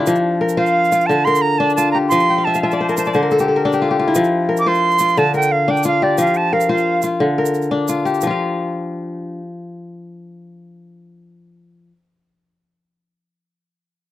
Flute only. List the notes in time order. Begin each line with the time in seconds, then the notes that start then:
0.57 F5
1.06 A5
1.25 C6
1.42 A#5
1.58 A5
1.76 A5
1.92 A#5
2.09 C6
2.44 A5
2.62 A5
2.69 A5
2.76 A5
2.83 A5
2.90 A5
2.98 A5
3.05 A5
3.12 A5
4.59 D6
4.68 C6
5.18 A5
5.36 G5
5.52 F5
5.70 G5
5.87 F5
6.03 D5
6.20 F5
6.37 A5
6.53 F5
6.72 F5